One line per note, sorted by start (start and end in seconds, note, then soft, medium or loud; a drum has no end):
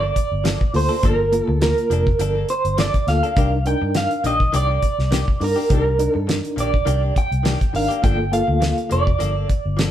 0.00 0.10 G1 medium
0.00 0.15 D4 soft
0.00 0.15 A4 medium
0.00 0.71 D5 medium
0.05 0.15 A#3 soft
0.15 muted clean electric guitar stroke soft
0.15 kick medium
0.15 closed hi-hat medium
0.32 0.55 G1 medium
0.44 0.61 F3 medium
0.44 0.60 A#3 medium
0.44 0.60 D4 medium
0.44 0.59 A4 medium
0.44 snare loud
0.44 closed hi-hat medium
0.60 muted clean electric guitar stroke soft
0.60 kick medium
0.74 0.87 D2 medium
0.74 0.94 A#3 medium
0.74 0.94 F4 medium
0.74 0.95 A4 medium
0.74 1.05 C5 medium
0.74 muted clean electric guitar stroke soft
0.74 open hi-hat medium
0.89 1.02 A#3 soft
0.89 1.03 D4 soft
0.89 1.03 A4 medium
1.02 1.40 G1 medium
1.02 1.19 F3 medium
1.02 1.23 A#3 medium
1.02 1.19 A#3 medium
1.02 1.18 D4 medium
1.02 1.23 F4 medium
1.02 1.24 A4 medium
1.02 1.17 A4 medium
1.02 1.44 A#4 medium
1.02 kick loud
1.02 closed hi-hat medium
1.19 muted clean electric guitar stroke soft
1.32 2.09 A#3 medium
1.32 2.09 F4 medium
1.32 2.09 A#4 medium
1.32 muted clean electric guitar stroke soft
1.32 closed hi-hat medium
1.44 1.72 D2 medium
1.44 1.59 A4 medium
1.44 muted clean electric guitar stroke soft
1.61 2.46 A#4 medium
1.61 muted clean electric guitar stroke soft
1.61 snare loud
1.61 closed hi-hat medium
1.78 closed hi-hat soft
1.90 2.14 F1 medium
1.90 2.07 F3 medium
1.90 2.06 A#3 medium
1.90 2.06 D4 medium
1.90 2.05 A4 medium
1.90 closed hi-hat medium
2.07 kick medium
2.19 2.43 G1 medium
2.19 2.36 F3 medium
2.19 2.36 A#3 medium
2.19 2.36 D4 medium
2.19 2.34 A4 medium
2.19 closed hi-hat medium
2.35 2.48 A#3 soft
2.35 2.49 D4 soft
2.35 2.49 A4 medium
2.49 2.79 C5 medium
2.49 muted clean electric guitar stroke soft
2.49 closed hi-hat medium
2.65 2.88 G1 medium
2.65 closed hi-hat soft
2.78 2.94 F3 medium
2.78 2.94 A#3 medium
2.78 2.94 D4 medium
2.78 2.93 A4 medium
2.78 3.06 D5 medium
2.78 snare loud
2.78 closed hi-hat medium
2.94 muted clean electric guitar stroke soft
2.94 kick medium
2.94 closed hi-hat soft
3.07 3.20 D2 medium
3.07 3.27 A#3 medium
3.07 3.28 F4 soft
3.07 3.28 A4 medium
3.07 3.67 F5 medium
3.07 muted clean electric guitar stroke soft
3.07 snare soft
3.07 closed hi-hat medium
3.23 3.36 A#3 soft
3.23 3.36 D4 soft
3.23 3.37 A4 soft
3.23 closed hi-hat soft
3.36 3.73 C2 medium
3.36 3.52 D#3 medium
3.36 3.52 A#3 medium
3.36 3.56 D4 medium
3.36 3.52 D4 medium
3.36 3.57 D#4 medium
3.36 3.51 G4 medium
3.36 3.57 A#4 medium
3.36 kick loud
3.36 closed hi-hat medium
3.52 muted clean electric guitar stroke soft
3.65 4.42 D4 medium
3.65 4.42 D#4 medium
3.65 4.42 A#4 medium
3.65 3.96 G5 medium
3.65 muted clean electric guitar stroke soft
3.65 closed hi-hat medium
3.81 4.05 G2 medium
3.81 muted clean electric guitar stroke soft
3.95 4.23 F5 medium
3.95 muted clean electric guitar stroke soft
3.95 snare loud
3.95 closed hi-hat medium
4.11 closed hi-hat soft
4.24 4.48 A#1 medium
4.24 4.40 D#3 medium
4.24 4.40 A#3 medium
4.24 4.40 D4 medium
4.24 4.39 G4 medium
4.24 4.55 D#5 medium
4.24 closed hi-hat medium
4.40 muted clean electric guitar stroke soft
4.40 kick medium
4.53 4.77 C2 medium
4.53 4.69 D#3 medium
4.53 4.69 A#3 medium
4.53 4.69 D4 medium
4.53 4.67 G4 medium
4.53 5.45 D5 medium
4.53 closed hi-hat medium
4.68 4.82 A#3 soft
4.68 4.82 D4 soft
4.68 4.82 G4 soft
4.82 muted clean electric guitar stroke soft
4.82 kick medium
4.82 closed hi-hat medium
4.99 5.22 C2 medium
4.99 snare soft
5.11 5.27 D#3 medium
5.11 5.27 A#3 medium
5.11 5.27 D4 medium
5.11 5.26 G4 medium
5.11 snare loud
5.11 closed hi-hat medium
5.27 muted clean electric guitar stroke soft
5.27 kick medium
5.40 5.53 G2 medium
5.40 5.60 D4 medium
5.40 5.61 D#4 medium
5.40 5.61 A#4 medium
5.40 5.72 A#4 medium
5.40 muted clean electric guitar stroke soft
5.40 open hi-hat medium
5.56 5.69 A#3 soft
5.56 5.69 D4 soft
5.56 5.70 G4 medium
5.69 6.06 C2 medium
5.69 5.86 D#3 medium
5.69 5.86 A#3 medium
5.69 5.90 D4 medium
5.69 5.85 D4 medium
5.69 5.90 D#4 medium
5.69 5.84 G4 medium
5.69 5.90 G4 medium
5.69 kick loud
5.69 closed hi-hat medium
5.75 6.13 A#4 medium
5.99 6.75 D4 medium
5.99 6.75 D#4 medium
5.99 6.76 A#4 medium
5.99 muted clean electric guitar stroke soft
5.99 closed hi-hat medium
6.13 6.38 G2 medium
6.13 6.27 A4 medium
6.13 muted clean electric guitar stroke soft
6.27 muted clean electric guitar stroke soft
6.27 snare loud
6.27 closed hi-hat medium
6.45 closed hi-hat soft
6.56 6.81 A#1 medium
6.56 6.73 D#3 medium
6.56 6.73 A#3 medium
6.56 6.72 D4 medium
6.56 6.71 G4 medium
6.56 closed hi-hat medium
6.60 7.17 D5 medium
6.72 muted clean electric guitar stroke soft
6.72 kick medium
6.85 7.10 C2 medium
6.85 7.02 D#3 medium
6.85 7.02 A#3 medium
6.85 7.01 D4 medium
6.85 7.00 G4 medium
6.85 closed hi-hat medium
7.01 7.14 A#3 soft
7.01 7.14 D4 soft
7.01 7.15 G4 medium
7.15 7.71 G5 medium
7.15 muted clean electric guitar stroke soft
7.15 kick medium
7.15 closed hi-hat medium
7.32 7.55 C2 medium
7.32 closed hi-hat soft
7.43 7.60 D#3 medium
7.43 7.60 A#3 medium
7.43 7.59 D4 medium
7.43 7.59 G4 medium
7.43 snare loud
7.43 closed hi-hat medium
7.61 kick medium
7.61 closed hi-hat soft
7.73 7.87 G#1 medium
7.73 7.94 D4 medium
7.73 7.94 D#4 medium
7.73 7.94 A#4 medium
7.73 8.04 F5 medium
7.73 muted clean electric guitar stroke soft
7.73 open hi-hat medium
7.88 8.02 A#3 soft
7.88 8.02 D4 soft
7.88 8.03 G4 medium
7.88 closed hi-hat soft
8.02 8.40 G1 medium
8.02 8.19 F3 medium
8.02 8.23 A#3 medium
8.02 8.19 A#3 medium
8.02 8.18 D4 medium
8.02 8.23 F4 medium
8.02 8.17 A4 medium
8.02 8.24 A4 medium
8.02 8.33 G5 loud
8.02 kick loud
8.02 closed hi-hat medium
8.19 muted clean electric guitar stroke soft
8.32 9.08 A#3 medium
8.32 9.09 F4 medium
8.32 9.09 A4 medium
8.32 8.92 F5 medium
8.32 muted clean electric guitar stroke soft
8.32 closed hi-hat medium
8.47 8.72 D2 medium
8.47 muted clean electric guitar stroke soft
8.60 muted clean electric guitar stroke soft
8.60 snare loud
8.60 closed hi-hat medium
8.78 closed hi-hat soft
8.90 9.15 F1 medium
8.90 9.06 F3 medium
8.90 9.07 A#3 medium
8.90 9.06 D4 medium
8.90 9.05 A4 medium
8.90 9.75 D5 medium
8.90 closed hi-hat medium
9.06 muted clean electric guitar stroke soft
9.06 kick medium
9.18 9.44 G1 medium
9.18 9.35 F3 medium
9.18 9.36 A#3 medium
9.18 9.35 D4 medium
9.18 9.33 A4 medium
9.18 closed hi-hat medium
9.34 9.47 A#3 soft
9.34 9.48 D4 soft
9.34 9.48 A4 soft
9.48 muted clean electric guitar stroke soft
9.48 kick medium
9.48 closed hi-hat medium
9.65 9.89 G1 medium
9.77 9.91 F3 medium
9.77 9.91 A#3 medium
9.77 9.91 D4 medium
9.77 9.91 A4 medium
9.77 snare loud
9.77 closed hi-hat medium